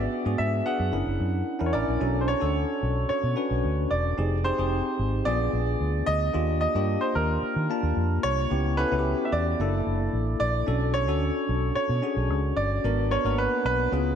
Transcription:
Already playing: B3 D4 F#4 G#4 D5
0.25 G#2 B3 D4 F#4 G#4
0.38 G#2 E5
0.66 B3 D4 F#4 G#4 F#5
0.80 F#2
0.92 F#1 C#4 D4 E4 A#4
1.07 F#1
1.20 F#2
1.59 E2 C#4 D4 E4 A#4
1.66 C#5
1.73 A1 C#4 D4 E4 A#4 D5
1.88 A#1
2.00 B1 C#4 D4 F#4 A4
2.21 C5
2.28 C#5
2.40 D2 C#4 D4 F#4 A4
2.83 B1
3.09 C#5, muted fingered electric bass stroke
3.24 B2
3.36 C#4 D4 F#4 B4
3.51 B1
3.64 D2
3.91 E1 D5
4.18 F1 C4 D#4 G4 G#4
4.44 C4 D#4 G4 G#4 C5
4.58 F1 C4 D#4 G4 G#4
4.99 G#1
5.25 A#1 B3 D4 F4 G#4 D5
5.53 A#1
5.81 D2
6.06 D2 D#5
6.33 D#2 A#3 D4 F4 G4
6.61 D#5
6.75 G2 A#3 D4 F4 G4
7.01 C5
7.15 D#2 A#4
7.56 D#3
7.70 A#3 D4 F4 A5
7.83 D#2
7.97 F2
8.23 C2 C#5
8.50 C#2 B3 C#4 E4 G4
8.77 B3 C#4 E4 A4 B4
8.91 C#2 B3 C#4 E4 F#4
8.99 G4
9.25 E5
9.32 E2 D5
9.60 F#1 A#3 D4 E4 A4
9.87 F#1
10.13 A1
10.40 A#1 D5
10.66 B1 C#4 D4 F#4 A4
10.94 C#5
11.08 D2 C#4 D4 F#4 A4
11.49 B1
11.75 C#5, muted fingered electric bass stroke
11.89 B2
12.02 C#4 D4 F#4 G#4
12.17 B1
12.30 C#2
12.57 G1 D5
12.84 G#1 B3 D4 F#4 A#4
13.11 B3 D4 F#4 A#4 C#5
13.24 G#1 A#3 D4 F#4 A#4
13.31 B3
13.38 B4
13.65 B1 B4
13.92 C#2 B3 C#4 F4 G#4

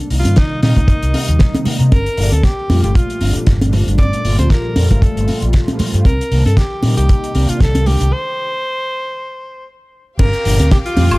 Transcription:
0.10 C2 C3 D#3 G3 A#3 D#4, open hi-hat
0.19 F4
0.25 G2, closed hi-hat, high conga
0.36 D#4, kick, snare, closed hi-hat
0.61 A#2 C3 D#3 G3 A#3 D#4, snare, open hi-hat, high conga
0.76 C2, kick, closed hi-hat, low conga
0.88 kick, closed hi-hat
1.03 C2, closed hi-hat
1.14 open hi-hat, high conga
1.28 D#2, closed hi-hat
1.39 kick, snare, closed hi-hat
1.55 closed hi-hat, high conga
1.65 muted fingered electric bass stroke, open hi-hat, low conga
1.80 C3, closed hi-hat
1.92 G1 A#4, kick, closed hi-hat, high conga
2.06 closed hi-hat
2.17 G1 A#2 F3 G3 A3 D4, open hi-hat
2.32 D2 A4, closed hi-hat, high conga
2.43 G4, kick, snare, closed hi-hat
2.69 F2 A#2 F3 G3 A3 F4, open hi-hat, high conga
2.84 G1 G4, closed hi-hat
2.95 F4, kick, closed hi-hat
3.10 closed hi-hat
3.20 G1 A#2 F3 G3 A3 D4, open hi-hat, high conga
3.36 muted fingered electric bass stroke, closed hi-hat
3.47 G1, kick, snare, closed hi-hat
3.61 closed hi-hat, high conga
3.73 open hi-hat, low conga
3.87 G1, closed hi-hat
3.98 G1 D5, kick, closed hi-hat, high conga
4.13 closed hi-hat
4.24 G1 A#2 F3 G3 A3 F4, open hi-hat
4.39 D2 C5, closed hi-hat, high conga
4.50 A#4, kick, snare, closed hi-hat
4.75 F2 A#2 F3 G3 A3 F4, open hi-hat, high conga
4.90 G1 A#4, kick, closed hi-hat, low conga
5.02 A4, kick, closed hi-hat
5.16 G1, closed hi-hat
5.28 open hi-hat, high conga
5.42 A#1, closed hi-hat
5.53 kick, snare, closed hi-hat
5.68 closed hi-hat, high conga
5.79 muted fingered electric bass stroke, open hi-hat, low conga
5.94 G2, closed hi-hat
6.05 C2 A#4, kick, closed hi-hat, high conga
6.21 closed hi-hat
6.31 C2 C3 D#3 G3 A#3 D4, open hi-hat
6.46 G2 A4, closed hi-hat, high conga
6.57 G4, kick, snare, closed hi-hat
6.83 A#2 C3 D#3 G3 A#3 D#4, open hi-hat, high conga
6.97 C2 G4, closed hi-hat
7.09 kick, closed hi-hat
7.24 closed hi-hat
7.34 C2 C3 D#3 G3 A#3 D4, open hi-hat, high conga
7.49 F4, muted fingered electric bass stroke, closed hi-hat
7.60 C2 A4, kick, snare, closed hi-hat
7.75 closed hi-hat, high conga
7.86 G4, open hi-hat, low conga
8.01 C2, closed hi-hat
8.13 C5
10.19 G1 G4 A#4 F5 G5 D6, kick, closed hi-hat, crash, high conga
10.33 closed hi-hat
10.45 G1 A#2 F3 G3 A3 D4, open hi-hat
10.60 D2, closed hi-hat, high conga
10.71 G4, kick, snare, closed hi-hat
10.85 F4, closed hi-hat
10.97 F2 A#2 F3 G3 A3 F4, open hi-hat, high conga
11.11 G1, closed hi-hat, high woodblock

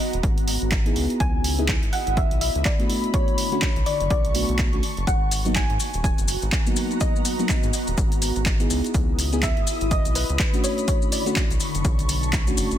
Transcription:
Already playing: B3 F#4 D#5 A#5
0.13 D#1, closed hi-hat
0.23 G#1, kick, closed hi-hat
0.38 closed hi-hat
0.48 open hi-hat
0.62 G#1, closed hi-hat
0.72 kick, clap, closed hi-hat
0.85 B3 D#4 E4 G#4, closed hi-hat
0.96 C#2 E4, open hi-hat
1.10 closed hi-hat
1.20 C#2 G#5, kick, closed hi-hat
1.44 D#5, open hi-hat
1.58 B3 D#4 E4 G#4, closed hi-hat
1.68 kick, clap, closed hi-hat
1.83 G#1 B5, closed hi-hat
1.93 F#5, open hi-hat
2.07 G#1, closed hi-hat
2.17 E5, kick, closed hi-hat
2.31 B1, closed hi-hat
2.41 E5, open hi-hat
2.55 C#2, closed hi-hat
2.65 D5, kick, clap, closed hi-hat
2.79 A3 B3 D4 F#4, closed hi-hat
2.90 D3, open hi-hat
3.04 closed hi-hat
3.10 C#5 C#6, kick, closed hi-hat
3.28 closed hi-hat
3.38 open hi-hat
3.52 A3 C#4 D4 F#4, closed hi-hat
3.62 kick, clap, closed hi-hat
3.76 B1, closed hi-hat
3.86 D5 A5, open hi-hat
4.00 F#1, closed hi-hat
4.10 B1 D5, kick, closed hi-hat
4.25 closed hi-hat
4.34 A3 B3 D4 F#4, open hi-hat
4.49 B1, closed hi-hat
4.59 kick, clap, closed hi-hat
4.73 A3 C#4 D4 F#4, closed hi-hat
4.83 open hi-hat
4.97 F#1, closed hi-hat
5.07 G#1 F#4 F#5, kick, closed hi-hat, maracas
5.31 open hi-hat, maracas
5.45 F#3 A#3 B3 D#4, closed hi-hat, maracas
5.55 G#5, kick, clap, closed hi-hat, maracas
5.70 G#2, closed hi-hat
5.76 B3, open hi-hat, maracas
5.86 A#5
5.94 D#1, closed hi-hat, maracas
6.04 G#5, kick, closed hi-hat, maracas
6.18 F#1, closed hi-hat, maracas
6.28 open hi-hat, maracas
6.42 G#1, closed hi-hat, maracas
6.52 kick, clap, closed hi-hat, maracas
6.66 F#3 A#3 B3 D#4, closed hi-hat, maracas
6.76 open hi-hat, maracas
6.91 closed hi-hat, maracas
7.00 D#5, kick, closed hi-hat, maracas
7.16 maracas
7.25 open hi-hat, maracas
7.39 F#3 A#3 B3 D#4, closed hi-hat, maracas
7.49 kick, clap, closed hi-hat, maracas
7.63 G#2, closed hi-hat, maracas
7.73 open hi-hat, maracas
7.87 D#1, closed hi-hat, maracas
7.97 G#1, kick, closed hi-hat, maracas
8.12 closed hi-hat, maracas
8.22 open hi-hat, maracas
8.36 G#1, closed hi-hat, maracas
8.46 kick, clap, closed hi-hat, maracas
8.60 B3 D#4 E4 G#4, closed hi-hat, maracas
8.70 C#2 E4, open hi-hat, maracas
8.84 D#6, closed hi-hat, maracas
8.94 C#2, kick, closed hi-hat, maracas
9.19 open hi-hat, maracas
9.32 B3 D#4 E4 G#4, closed hi-hat, maracas
9.38 B5
9.43 E5, kick, clap, closed hi-hat, maracas
9.57 G#1, closed hi-hat
9.67 open hi-hat, maracas
9.81 G#1, closed hi-hat, maracas
9.91 D#5, kick, closed hi-hat, maracas
10.05 B1, closed hi-hat, maracas
10.15 B4, open hi-hat, maracas
10.29 C#2, closed hi-hat, maracas
10.39 kick, clap, closed hi-hat, maracas
10.53 A3 C#4 D4 F#4, closed hi-hat, maracas
10.64 D3 C#5, open hi-hat, maracas
10.78 closed hi-hat, maracas
10.88 C#5, kick, closed hi-hat, maracas
10.94 C#6
11.02 maracas
11.12 D5, open hi-hat, maracas
11.26 A3 C#4 D4 F#4, closed hi-hat, maracas
11.36 kick, clap, closed hi-hat, maracas
11.51 B1, closed hi-hat, maracas
11.60 A5, open hi-hat, maracas
11.75 F#1, closed hi-hat, maracas
11.85 B1, kick, closed hi-hat, maracas
11.99 closed hi-hat, maracas
12.09 B1, open hi-hat, maracas
12.23 closed hi-hat, maracas
12.33 kick, clap, closed hi-hat, maracas
12.47 A3 C#4 D4 F#4, closed hi-hat, maracas
12.57 F#1, open hi-hat, maracas
12.71 F#1, closed hi-hat, maracas

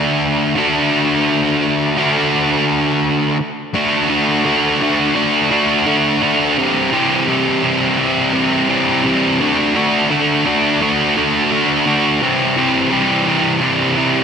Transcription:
Already playing: D3 A3 D4 F#4
0.56 D3 A3 D4 F#4
1.97 D3 A3 D4 F#4
3.74 D3 A3 D4 F#4
4.09 D3 A3 D4 F#4
4.44 D3 A3 D4 F#4
4.81 D3 A3 D4 F#4
5.15 D3 A3 D4 F#4
5.51 D3 A3 D4 F#4
5.86 D3 A3 D4 F#4
6.22 D3 A3 D4 F#4
6.58 C3 E3 G3 C4 G4
6.92 C3 E3 G3 C4 G4
7.27 C3 E3 G3 C4 G4
7.63 C3 E3 G3 C4 G4
7.98 C3 E3 G3 C4 G4
8.33 C3 E3 G3 C4 G4
8.69 C3 E3 G3 C4 G4
9.04 C3 E3 G3 C4 G4
9.40 D3 A3 D4 F#4
9.76 D3 A3 D4 F#4
10.10 D3 A3 D4 F#4
10.46 D3 A3 D4 F#4
10.81 D3 A3 D4 F#4
11.16 D3 A3 D4 F#4
11.51 D3 A3 D4 F#4
11.86 D3 A3 D4 F#4
12.21 C3 E3 G3 C4 G4
12.56 C3 E3 G3 C4 G4
12.91 C3 E3 G3 C4 G4
13.27 C3 E3 G3 C4 G4
13.62 C3 E3 G3 C4 G4
13.97 C3 E3 G3 C4 G4

